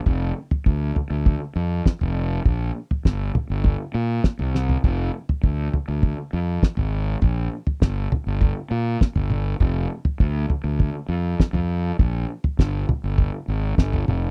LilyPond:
<<
  \new Staff \with { instrumentName = "Fingered electric bass" } { \clef bass \time 4/4 \key g \phrygian \tempo 4 = 101 f,,8 r8 d,8 r16 d,8 r16 f,8 r16 f,,8. | bes,,8 r8 g,,8 r16 g,,8 r16 bes,8 r16 c,8. | f,,8 r8 d,8 r16 d,8 r16 f,8 r16 aes,,8. | bes,,8 r8 g,,8 r16 g,,8 r16 bes,8 r16 g,,8. |
f,,8 r8 d,8 r16 d,8 r16 f,8 r16 f,8. | bes,,8 r8 g,,8 r16 g,,8 r16 aes,,8 g,,8 f,,8 | }
  \new DrumStaff \with { instrumentName = "Drums" } \drummode { \time 4/4 <bd tomfh>8. tomfh16 bd8 tomfh8 <bd tomfh>4 <bd sn>16 tomfh8. | <bd tomfh>8. tomfh16 <bd sn>8 <tomfh toml>8 <bd tomfh>4 <bd sn>16 tomfh16 sn16 tomfh16 | <bd tomfh>8. tomfh16 bd8 tomfh8 <bd tomfh>4 <bd sn>16 tomfh8. | <bd tomfh>8. tomfh16 <bd sn>8 <tomfh toml>8 <bd tomfh>4 <bd sn>16 tomfh16 toml8 |
<bd tomfh>8. tomfh16 bd8 tomfh8 <bd tomfh>4 <bd sn>16 tomfh8. | <bd tomfh>8. tomfh16 <bd sn>8 <tomfh toml>8 <bd tomfh>4 <bd sn>16 tomfh16 toml8 | }
>>